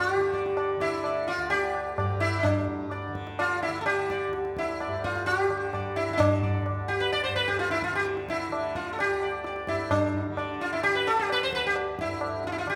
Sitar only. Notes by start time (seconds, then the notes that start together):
0.00 G4
0.34 D5
0.57 D5
0.81 E4 D5
1.05 D5
1.28 F4 D5
1.50 G4 D5
1.99 D5
2.20 E4 D5
2.39 D4 E4
2.92 D5
3.39 F4
3.62 E4
3.81 A4
3.86 G4
4.11 D5
4.58 E4
4.81 D5
5.04 F4
5.26 G4
5.74 D5
5.96 E4
6.13 E4
6.18 D4
6.43 D5
6.88 G4
7.00 B4
7.12 D5
7.24 C5
7.36 B4
7.48 G4
7.59 F4
7.71 E4
7.84 F4
7.95 G4
8.30 E4
8.76 F4
8.93 A4
9.00 G4
9.23 D5
9.46 D5
9.68 E4
9.91 D4
10.38 D5
10.61 F4
10.73 E4
10.83 G4
10.95 B4
11.07 A4
11.19 G4
11.32 B4
11.43 C5
11.55 B4
11.67 G4
12.01 E4
12.47 F4
12.52 E4
12.58 F4
12.70 G4